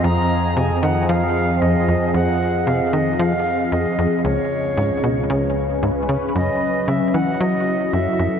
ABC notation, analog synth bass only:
X:1
M:4/4
L:1/8
Q:1/4=114
K:Fphr
V:1 name="Analog synth bass" clef=bass
F,, z C, E, F, z F,, F,, | F,, z C, E, F, z F,, F,, | D,, z A,, _C, D, z A,, D, | [K:F#dor] F,, z C, E, F, z F,, F,, |]